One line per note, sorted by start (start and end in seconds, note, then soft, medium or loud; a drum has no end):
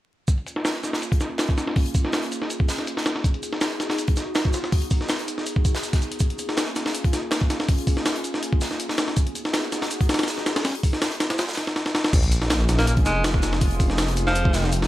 0.28 3.21 A#3 medium
0.28 3.21 C#4 medium
0.28 3.21 F4 medium
0.28 9.13 G#4 medium
0.28 kick loud
0.28 closed hi-hat medium
0.28 shaker medium
0.38 closed hi-hat soft
0.46 closed hi-hat medium
0.46 shaker medium
0.56 snare soft
0.65 snare loud
0.65 closed hi-hat medium
0.65 shaker medium
0.84 snare soft
0.84 closed hi-hat medium
0.84 shaker medium
0.93 snare medium
0.93 snare soft
1.02 closed hi-hat medium
1.02 shaker medium
1.12 kick medium
1.12 closed hi-hat soft
1.20 snare soft
1.20 closed hi-hat medium
1.20 shaker medium
1.38 snare loud
1.38 closed hi-hat medium
1.38 shaker medium
1.49 kick medium
1.58 snare soft
1.58 closed hi-hat medium
1.58 shaker medium
1.67 snare soft
1.76 kick loud
1.76 closed hi-hat medium
1.76 open hi-hat medium
1.86 closed hi-hat soft
1.94 kick medium
1.94 open hi-hat medium
1.94 shaker medium
2.05 snare soft
2.13 snare loud
2.13 closed hi-hat medium
2.13 shaker medium
2.23 closed hi-hat soft
2.32 closed hi-hat medium
2.32 shaker medium
2.42 snare soft
2.50 closed hi-hat medium
2.50 shaker medium
2.60 kick medium
2.68 snare loud
2.68 closed hi-hat medium
2.68 shaker medium
2.79 snare soft
2.87 closed hi-hat medium
2.87 shaker medium
2.97 snare soft
3.06 snare loud
3.06 closed hi-hat medium
3.06 shaker medium
3.16 snare soft
3.24 6.17 B3 medium
3.24 6.18 D#4 medium
3.24 6.17 F#4 medium
3.24 kick loud
3.24 closed hi-hat medium
3.24 shaker medium
3.34 closed hi-hat soft
3.43 closed hi-hat medium
3.43 shaker medium
3.53 snare soft
3.61 snare loud
3.61 closed hi-hat medium
3.61 shaker medium
3.80 snare soft
3.80 closed hi-hat medium
3.80 shaker medium
3.89 snare soft
3.89 snare medium
3.98 closed hi-hat medium
3.98 shaker medium
4.08 kick medium
4.08 closed hi-hat soft
4.16 snare soft
4.16 closed hi-hat medium
4.16 shaker medium
4.35 snare loud
4.35 closed hi-hat medium
4.35 shaker medium
4.45 kick medium
4.53 snare soft
4.53 closed hi-hat medium
4.53 shaker medium
4.64 snare soft
4.72 kick loud
4.72 closed hi-hat medium
4.72 open hi-hat medium
4.82 closed hi-hat soft
4.91 kick medium
4.91 open hi-hat medium
4.91 shaker medium
5.01 snare soft
5.09 snare loud
5.09 closed hi-hat medium
5.09 shaker medium
5.19 closed hi-hat soft
5.28 closed hi-hat medium
5.28 shaker medium
5.38 snare soft
5.46 closed hi-hat medium
5.46 shaker medium
5.56 kick medium
5.65 kick medium
5.65 closed hi-hat medium
5.65 shaker medium
5.75 snare loud
5.75 closed hi-hat soft
5.83 closed hi-hat medium
5.83 shaker medium
5.93 kick medium
5.93 snare soft
5.93 closed hi-hat medium
6.02 closed hi-hat soft
6.02 shaker medium
6.12 closed hi-hat medium
6.19 9.14 A#3 medium
6.19 9.14 C#4 medium
6.19 9.14 F4 medium
6.19 kick loud
6.19 closed hi-hat medium
6.19 shaker medium
6.30 closed hi-hat soft
6.39 closed hi-hat medium
6.39 shaker medium
6.49 snare soft
6.57 snare loud
6.57 closed hi-hat medium
6.57 shaker medium
6.76 snare soft
6.76 closed hi-hat medium
6.76 shaker medium
6.86 snare medium
6.86 snare soft
6.95 closed hi-hat medium
6.95 shaker medium
7.04 kick medium
7.04 closed hi-hat soft
7.13 snare soft
7.13 closed hi-hat medium
7.13 shaker medium
7.31 snare loud
7.31 closed hi-hat medium
7.31 shaker medium
7.41 kick medium
7.50 snare soft
7.50 closed hi-hat medium
7.50 shaker medium
7.60 snare soft
7.68 kick loud
7.68 closed hi-hat medium
7.68 open hi-hat medium
7.78 closed hi-hat soft
7.87 kick medium
7.87 open hi-hat medium
7.87 shaker medium
7.97 snare soft
8.06 snare loud
8.06 closed hi-hat medium
8.06 shaker medium
8.16 closed hi-hat soft
8.24 closed hi-hat medium
8.24 shaker medium
8.34 snare soft
8.43 closed hi-hat medium
8.43 shaker medium
8.53 kick medium
8.61 snare medium
8.61 closed hi-hat medium
8.61 shaker medium
8.71 snare soft
8.80 closed hi-hat medium
8.80 shaker medium
8.89 snare soft
8.98 snare loud
8.98 closed hi-hat medium
8.98 shaker medium
9.08 snare soft
9.17 11.74 B3 medium
9.17 11.74 D#4 medium
9.17 11.74 F#4 medium
9.17 11.74 G#4 medium
9.17 kick loud
9.17 closed hi-hat medium
9.17 shaker medium
9.27 closed hi-hat soft
9.35 closed hi-hat medium
9.35 shaker medium
9.45 snare soft
9.53 snare loud
9.53 closed hi-hat medium
9.53 shaker medium
9.72 snare soft
9.72 closed hi-hat medium
9.72 shaker medium
9.82 snare medium
9.91 closed hi-hat medium
9.91 shaker medium
10.01 kick medium
10.01 closed hi-hat soft
10.09 snare medium
10.09 closed hi-hat medium
10.09 shaker medium
10.14 snare medium
10.14 closed hi-hat medium
10.19 snare medium
10.19 closed hi-hat medium
10.23 snare medium
10.23 closed hi-hat medium
10.28 snare loud
10.28 closed hi-hat medium
10.28 shaker medium
10.38 snare soft
10.46 snare medium
10.46 closed hi-hat medium
10.46 shaker medium
10.56 snare loud
10.56 closed hi-hat medium
10.65 snare medium
10.65 closed hi-hat medium
10.65 open hi-hat medium
10.75 closed hi-hat soft
10.83 kick medium
10.83 open hi-hat medium
10.83 shaker medium
10.93 snare soft
11.02 snare loud
11.02 closed hi-hat medium
11.02 shaker medium
11.11 closed hi-hat soft
11.20 snare medium
11.20 closed hi-hat medium
11.20 shaker medium
11.30 snare loud
11.30 closed hi-hat medium
11.38 snare loud
11.38 closed hi-hat medium
11.38 shaker medium
11.48 snare medium
11.48 shaker medium
11.52 snare medium
11.52 shaker medium
11.57 snare soft
11.57 closed hi-hat medium
11.67 snare soft
11.76 snare medium
11.86 snare medium
11.95 snare medium
12.04 snare medium
12.13 13.04 A#1 loud
12.13 14.87 A#3 medium
12.13 14.87 C#4 medium
12.13 14.87 F4 medium
12.13 14.87 G#4 medium
12.13 kick loud
12.13 closed hi-hat medium
12.13 crash medium
12.13 sub drop medium
12.13 shaker medium
12.23 closed hi-hat soft
12.32 closed hi-hat medium
12.32 shaker medium
12.42 snare soft
12.50 snare loud
12.50 closed hi-hat medium
12.50 shaker medium
12.69 snare soft
12.69 closed hi-hat medium
12.69 shaker medium
12.78 12.84 A#3 medium
12.78 snare medium
12.87 12.94 A#3 medium
12.87 closed hi-hat medium
12.87 shaker medium
12.97 kick medium
12.97 closed hi-hat soft
13.05 14.87 F1 medium
13.05 13.28 G#3 medium
13.05 snare soft
13.05 closed hi-hat medium
13.05 shaker medium
13.24 snare loud
13.24 closed hi-hat medium
13.24 shaker medium
13.34 kick loud
13.42 snare soft
13.42 closed hi-hat medium
13.42 shaker medium
13.53 snare soft
13.61 kick loud
13.61 closed hi-hat medium
13.61 open hi-hat medium
13.71 closed hi-hat soft
13.80 kick loud
13.80 open hi-hat medium
13.80 shaker medium
13.90 snare soft
13.98 snare loud
13.98 closed hi-hat medium
13.98 shaker medium
14.08 closed hi-hat soft
14.16 closed hi-hat medium
14.16 shaker medium
14.27 14.78 F3 medium
14.27 snare soft
14.35 closed hi-hat medium
14.35 shaker medium
14.45 kick loud
14.53 snare loud
14.53 closed hi-hat medium
14.53 shaker medium
14.64 snare soft
14.72 closed hi-hat medium
14.72 shaker medium
14.82 snare soft